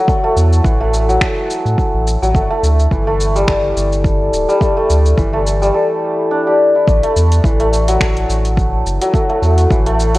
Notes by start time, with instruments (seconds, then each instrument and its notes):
Already playing: santur E3 F#3 A4
0.08 santur A3, kick, shaker
0.24 santur A3
0.36 sub bass E2, shaker
0.53 shaker
0.64 sub bass A1, santur E3, kick, shaker
0.81 santur A3
0.94 shaker
1.09 santur F#3, shaker
1.21 finger snap, kick, shaker
1.50 shaker
1.65 sub bass A2, shaker
1.78 kick, shaker
1.93 sub bass A1
2.07 shaker
2.22 sub bass A1, santur F#3, shaker
2.35 sub bass G1, santur A3, kick, shaker
2.50 santur A3
2.63 sub bass D2, shaker
2.79 shaker
2.91 sub bass G1, santur E3, kick, shaker
3.07 santur A3
3.20 shaker
3.35 santur G3, shaker
3.48 sub bass G1, santur A4, finger snap, kick, shaker
3.76 sub bass G1, shaker
3.93 shaker
4.04 kick, shaker
4.33 sub bass D1, shaker
4.49 santur G3, shaker
4.61 santur A3, kick, shaker
4.77 santur A3
4.90 sub bass D2, shaker
5.06 shaker
5.18 sub bass G1, santur E3, kick, shaker
5.33 santur A3
5.47 shaker
5.62 santur G3, shaker
5.74 santur A4
6.31 santur D4
6.47 santur G4
6.75 santur E4
6.87 sub bass A1, santur A3, kick, shaker
7.03 santur A3, closed hi-hat
7.16 sub bass E2, shaker
7.32 closed hi-hat, shaker
7.44 sub bass A1, santur E3, kick, shaker
7.60 santur A3, closed hi-hat
7.73 shaker
7.88 santur F#3, closed hi-hat, shaker
8.01 sub bass A1, santur A4, finger snap, kick, shaker
8.17 closed hi-hat
8.29 sub bass A1, shaker
8.45 closed hi-hat, shaker
8.57 kick, shaker
8.86 sub bass F#1, shaker
9.02 santur F#3, closed hi-hat, shaker
9.14 santur A3, kick, shaker
9.30 santur A3, closed hi-hat
9.42 sub bass E2, shaker
9.58 closed hi-hat, shaker
9.70 sub bass A1, santur E3, kick, shaker
9.86 santur A3, closed hi-hat
10.00 shaker
10.15 santur F#3, closed hi-hat, shaker